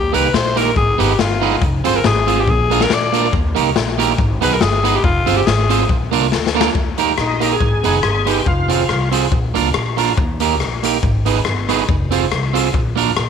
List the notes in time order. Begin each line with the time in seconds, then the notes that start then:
Already playing: D#2 G4
0.12 C2 A#3 D#4 G4 A#4 B4, closed hi-hat
0.34 A#1 C5, snare
0.56 A#3 D#4 G4 A#4, closed hi-hat
0.76 G#1 G#4, kick
0.98 G1 B3 D#4 G4 G#4 B4, closed hi-hat
1.19 G1 F4, snare
1.41 B3 D#4 G#4 B4, open hi-hat
1.61 F1, kick, hi-hat pedal
1.84 G1 C4 F4 G#4 C5, closed hi-hat
1.96 A#4
2.04 G#1 G#4, snare
2.27 C4 F4 G#4 C5, closed hi-hat
2.40 G4
2.48 A#1 G#4, kick
2.70 A#3 D4 F4 A#4, closed hi-hat
2.81 A#4, snare
2.90 A#1 D5, snare
3.12 A#3 D4 F4 A#4, closed hi-hat
3.33 D#2, kick
3.55 C2 A#3 D#4 G4 A#4, closed hi-hat
3.76 A#1, snare
3.98 A#3 D#4 G4 A#4, closed hi-hat
4.18 G#1, kick
4.41 B1 B3 D#4 G#4 B4, closed hi-hat
4.54 A#4
4.61 G1 G#4, snare
4.83 B3 D#4 G#4 B4, closed hi-hat
4.95 G4
5.04 F1 F4, kick
5.26 G1 C4 F4 G#4 C5, closed hi-hat
5.37 G4
5.46 G#1 G#4, snare
5.69 C4 F4 G#4 C5, closed hi-hat
5.89 A#1, kick
6.11 C2 A#3 D4 F4 A#4, closed hi-hat
6.32 D2, snare
6.46 snare
6.55 A#3 D4 F4 A#4
6.61 snare
6.75 D#2, kick
6.98 A#3 D#4 G4 A#4, closed hi-hat
7.18 A#1 D#4, cross-stick
7.40 A#3 D#4 G4 A#4, closed hi-hat
7.53 G#4
7.61 G#1, muted clean electric guitar stroke, kick
7.84 F1 B3 D#4 G#4 B4, closed hi-hat
8.03 G1, cross-stick
8.26 B3 D#4 G4 G#4 B4, closed hi-hat
8.46 F1 F4, kick
8.68 C4 F4 G#4 C5, closed hi-hat
8.89 C2, cross-stick
9.11 C4 F4 G#4 C5, closed hi-hat
9.31 A#1, muted clean electric guitar stroke, kick
9.54 C2 A#3 D4 F4 A#4, closed hi-hat
9.74 A#1, cross-stick
9.97 A#3 D4 F4 A#4, closed hi-hat
10.18 D#2, kick
10.40 A#3 D#4 G4 A#4, closed hi-hat
10.60 A#1, cross-stick
10.83 A#3 D#4 G4 A#4, closed hi-hat
11.03 G#1, muted clean electric guitar stroke, kick
11.25 B3 D#4 G#4 B4, closed hi-hat
11.45 G1, cross-stick
11.69 B3 D#4 G#4 B4, cross-stick, closed hi-hat
11.89 F1, kick
12.11 C4 F4 G#4 C5, closed hi-hat
12.32 C2, cross-stick
12.53 C4 F4 G#4 C5, closed hi-hat
12.73 A#1, muted clean electric guitar stroke, kick
12.96 A#3 D4 F4 A#4, closed hi-hat
13.17 A#1, cross-stick